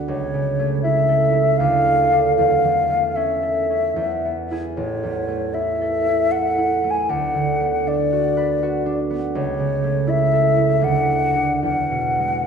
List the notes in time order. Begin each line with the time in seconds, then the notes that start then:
Already playing: D2 D3 B3 D4 F#4 B4
0.08 C#2 C#5
0.34 C#3
0.59 A3
0.83 E4 E5
1.09 A4
1.33 E4
1.57 D2 F5
1.85 A3
2.11 D4 A4
2.37 E2 F5
2.64 E3
2.90 A3
3.16 C#4 E5
3.43 A4
3.70 C#4
3.96 E2
4.25 B3
4.51 E4 G#4
4.76 A1 C#5
5.04 E2
5.28 A3
5.54 E4 E5
5.81 A4
6.06 E4
6.31 A4 F#5
6.58 E4
6.84 A3
6.91 G#5
7.09 D2 F#5
7.34 D3
7.61 B3
7.87 D4 D5
8.13 F#4
8.37 B4
8.63 F#4
8.86 D4
9.10 B3
9.35 C#2 C#5
9.60 C#3
9.84 A3
10.07 E4 E5
10.33 A4
10.57 E4
10.81 D2 F#5
11.09 A3
11.35 D4 A4
11.63 E2 F#5
11.91 B2
12.19 G#3